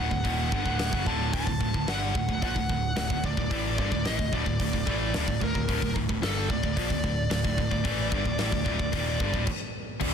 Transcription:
Already playing: D1 F#5
0.00 A2
0.11 D1 D2 A2, kick
0.24 D#1 D#2 A#2 D#3, kick, open hi-hat
0.51 G1 G2 D3, kick
0.65 D1 D2 A2 D3, kick
0.79 snare, open hi-hat
0.92 F#1 F#2 C#3, kick
1.06 D1 D2 A2 D3 A5, kick
1.33 D1 D2 A2 A5, kick, open hi-hat
1.47 D1 D2 A2, kick
1.60 D1 D2 A2, kick
1.74 D1 D2 A2, kick
1.87 G1 G2 D3 G3 F#5, snare, open hi-hat
2.15 D1 D2 A2, kick
2.29 D1 D2 A2, kick
2.42 A#1 A#2 F3 F#5, kick, open hi-hat
2.55 D1 D2 A2, kick
2.69 D1 D2 A2, kick
2.96 D1 D2 A2, snare, open hi-hat
3.10 D1 D2 A2, kick
3.24 D1 D2 A2 D5, kick
3.37 D1 D2 A2, kick
3.51 A1 A2 E3 A3, kick, open hi-hat
3.78 G1 G2 D3 D5, kick
3.92 D1 D2 A2, kick
4.04 A1 A2 E3 D#5, snare, open hi-hat
4.19 D1 D2 A2, kick
4.33 D1 D2 A2 D5, kick
4.46 D1 D2 A2, kick
4.60 D1 D2 A2, kick, open hi-hat
4.73 D1 D2 A2, kick
4.87 A1 A2 E3 A3, kick
5.14 D1 D2 A2, snare, open hi-hat
5.27 D1 D2 A2, kick
5.41 D1 D2 A2 A#4, kick
5.55 D1 D2 A2, kick
5.68 D1 D2 A2, kick, open hi-hat
5.82 D1 D2 A2, kick
5.96 D1 D2 A2, kick
6.09 D1 D2 A2, kick
6.22 G1 G2 D3 G3 A4, snare, open hi-hat
6.50 D1 D2 A2 D5, kick
6.63 D1 D2 A2, kick
6.76 A#1 A#2 F3, kick, open hi-hat
6.89 D1 D2 A2, kick
7.04 D1 D2 A2, kick
7.30 D1 D2 A2, snare, open hi-hat
7.44 D1 D2 A2, kick
7.57 D1 D2 A2, kick
7.70 D1 D2 A2, kick
7.84 A1 A2 E3 A3, kick, open hi-hat
8.11 G1 G2 D3, kick
8.25 D1 D2 A2, kick
8.38 A1 A2 E3, snare, open hi-hat
8.51 D1 D2 A2, kick
8.65 D1 D2 A2, kick
8.78 D1 D2 A2, kick
8.92 D#1 D#2 A#2 D#3, kick, open hi-hat
9.19 G1 G2 D3, kick
9.33 D1 D2 A2, kick
9.47 kick, crash
10.00 D1 D2 A2 D3, kick, crash

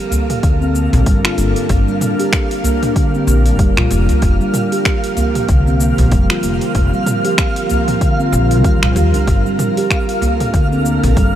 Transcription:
Already playing: G3 D4 A4 A#4 F5
0.11 A#3, open hi-hat, udu, cabasa
0.30 mid tom, open hi-hat, cabasa
0.43 D2 D3, kick, open hi-hat, cabasa
0.61 C4, cabasa
0.75 A#3, cabasa
0.93 A#1, open hi-hat, udu, cabasa
1.06 G1 G3, kick, open hi-hat, cabasa
1.24 F4, finger snap, cabasa
1.38 G1 A#3, open hi-hat, cabasa
1.56 open hi-hat, cabasa
1.69 G1 G4, kick, open hi-hat, cabasa
1.88 G3, cabasa
2.01 mid tom, open hi-hat, cabasa
2.20 G4, open hi-hat, cabasa
2.33 finger snap, kick, cabasa
2.51 open hi-hat, cabasa
2.64 A#3, open hi-hat, udu, cabasa
2.83 mid tom, open hi-hat, cabasa
2.96 D3, kick, open hi-hat, cabasa
3.14 C4, cabasa
3.27 A#1 A#3, cabasa
3.46 open hi-hat, cabasa
3.59 F1 G3, kick, open hi-hat, cabasa
3.77 A#1 F4, finger snap, udu, cabasa
3.90 F1 A#3, open hi-hat, cabasa
4.09 open hi-hat, udu, cabasa
4.22 F1 F3 C4 G4 A#4, kick, open hi-hat, cabasa
4.41 G3, cabasa
4.54 mid tom, open hi-hat, cabasa
4.72 G4, open hi-hat, cabasa
4.85 finger snap, kick, cabasa
5.04 open hi-hat, cabasa
5.17 A#3, open hi-hat, udu, cabasa
5.35 mid tom, open hi-hat, cabasa
5.49 C2 D3, kick, open hi-hat, cabasa
5.67 C4, cabasa
5.80 A#3, cabasa
5.98 A#1, open hi-hat, udu, cabasa
6.12 F1 G3, kick, open hi-hat, cabasa
6.30 F4, finger snap, cabasa
6.43 F1 A#3, open hi-hat, cabasa
6.61 open hi-hat, cabasa
6.74 F1 F4, kick, open hi-hat, cabasa
6.93 G3, cabasa
7.06 mid tom, open hi-hat, cabasa
7.25 G4, open hi-hat, cabasa
7.38 finger snap, kick, cabasa
7.56 open hi-hat, cabasa
7.69 A#3, open hi-hat, udu, cabasa
7.88 mid tom, open hi-hat, cabasa
8.01 D3, kick, open hi-hat, cabasa
8.20 C4, cabasa
8.32 A#1 F4, cabasa
8.51 open hi-hat, cabasa
8.64 D#2 G3, kick, open hi-hat, cabasa
8.82 A#1 G3, finger snap, udu, cabasa
8.96 D#2 G4, open hi-hat, cabasa
9.14 D4, open hi-hat, udu, cabasa
9.27 G1 G3 D4 A4, kick, open hi-hat, cabasa
9.46 G3, cabasa
9.59 mid tom, open hi-hat, cabasa
9.77 G4, open hi-hat, cabasa
9.91 finger snap, kick, cabasa
10.09 open hi-hat, cabasa
10.22 A#3, open hi-hat, udu, cabasa
10.40 mid tom, open hi-hat, cabasa
10.54 D2 D3, kick, open hi-hat, cabasa
10.72 C4, cabasa
10.85 A#3, cabasa
11.03 A#1, open hi-hat, udu, cabasa
11.17 G1 G3, kick, open hi-hat, cabasa

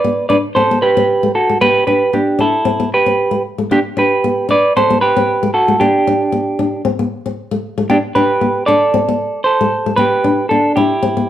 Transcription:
Already playing: B4 D5
0.04 B3
0.29 D4 B4 D5
0.55 C4 A4 C5
0.71 B3
0.82 G4 B4
0.97 C4
1.23 A3
1.35 F#4 A4
1.50 A3
1.61 B3 G4 B4
1.87 D4 G4 B4
2.13 B3 D4 G4
2.39 D4 E4 A4
2.65 C4
2.80 B3
2.94 G4 B4
3.06 C4
3.31 A3
3.58 A3
3.71 B3 D4 G4
3.97 D4 G4 B4
4.24 B3
4.49 D4 B4 D5
4.77 C4 A4 C5
4.90 B3
5.01 G4 B4
5.17 C4
5.43 A3
5.54 F#4 A4
5.68 A3
5.80 B3 D4 G4
6.07 D4
6.32 B3
6.59 D4
6.85 C4
6.99 B3
7.26 C4
7.51 A3
7.78 A3
7.90 B3 D4 G4
8.15 D4 G4 B4
8.41 B3
8.66 D4 A4 D5
8.94 C4
9.09 B3
9.44 A4 C5
9.61 A3
9.86 A3
9.96 B3 G4 B4
10.24 D4
10.49 B3 D4 A4
10.76 D4 E4 G4
11.03 C4
11.17 B3

